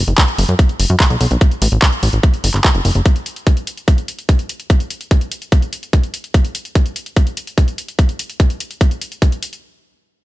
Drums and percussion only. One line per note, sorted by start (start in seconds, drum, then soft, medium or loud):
0.08 closed hi-hat soft
0.18 kick loud
0.18 clap loud
0.18 closed hi-hat medium
0.28 closed hi-hat soft
0.38 open hi-hat medium
0.49 closed hi-hat soft
0.59 kick loud
0.59 closed hi-hat medium
0.69 closed hi-hat soft
0.80 open hi-hat loud
0.90 closed hi-hat soft
1.00 kick loud
1.00 clap loud
1.00 closed hi-hat medium
1.10 closed hi-hat soft
1.21 open hi-hat medium
1.31 closed hi-hat soft
1.41 kick loud
1.41 closed hi-hat medium
1.51 closed hi-hat soft
1.62 open hi-hat loud
1.72 closed hi-hat soft
1.82 kick loud
1.82 clap loud
1.82 closed hi-hat medium
1.93 closed hi-hat soft
2.03 open hi-hat medium
2.13 closed hi-hat soft
2.23 kick loud
2.23 closed hi-hat medium
2.34 closed hi-hat soft
2.44 open hi-hat loud
2.54 clap soft
2.54 closed hi-hat soft
2.64 kick loud
2.64 clap loud
2.64 closed hi-hat medium
2.75 closed hi-hat soft
2.85 open hi-hat medium
2.95 closed hi-hat soft
3.06 kick loud
3.06 closed hi-hat medium
3.16 closed hi-hat soft
3.26 closed hi-hat medium
3.36 closed hi-hat soft
3.47 kick loud
3.47 closed hi-hat medium
3.57 closed hi-hat soft
3.67 closed hi-hat medium
3.77 closed hi-hat soft
3.88 kick loud
3.88 closed hi-hat medium
3.98 closed hi-hat soft
4.08 closed hi-hat medium
4.19 closed hi-hat soft
4.29 kick loud
4.29 closed hi-hat medium
4.39 closed hi-hat soft
4.49 closed hi-hat medium
4.60 closed hi-hat soft
4.70 kick loud
4.70 closed hi-hat medium
4.80 closed hi-hat soft
4.90 closed hi-hat medium
5.01 closed hi-hat soft
5.11 kick loud
5.11 closed hi-hat medium
5.21 closed hi-hat soft
5.32 closed hi-hat medium
5.42 closed hi-hat soft
5.52 kick loud
5.52 closed hi-hat medium
5.62 closed hi-hat soft
5.73 closed hi-hat medium
5.83 closed hi-hat soft
5.93 kick loud
5.93 closed hi-hat medium
6.03 closed hi-hat soft
6.14 closed hi-hat medium
6.24 closed hi-hat soft
6.34 kick loud
6.34 closed hi-hat medium
6.45 closed hi-hat soft
6.55 closed hi-hat medium
6.65 closed hi-hat soft
6.75 kick loud
6.75 closed hi-hat medium
6.86 closed hi-hat soft
6.96 closed hi-hat medium
7.06 closed hi-hat soft
7.16 kick loud
7.16 closed hi-hat medium
7.27 closed hi-hat soft
7.37 closed hi-hat loud
7.47 closed hi-hat soft
7.58 kick loud
7.58 closed hi-hat medium
7.68 closed hi-hat soft
7.78 closed hi-hat medium
7.88 closed hi-hat soft
7.99 kick loud
7.99 closed hi-hat medium
8.09 closed hi-hat soft
8.19 closed hi-hat medium
8.30 closed hi-hat soft
8.40 kick loud
8.40 closed hi-hat medium
8.50 closed hi-hat soft
8.60 closed hi-hat loud
8.71 closed hi-hat soft
8.81 kick loud
8.81 closed hi-hat medium
8.91 closed hi-hat soft
9.01 closed hi-hat medium
9.12 closed hi-hat soft
9.22 kick loud
9.22 closed hi-hat medium
9.32 closed hi-hat soft
9.43 closed hi-hat medium
9.53 closed hi-hat soft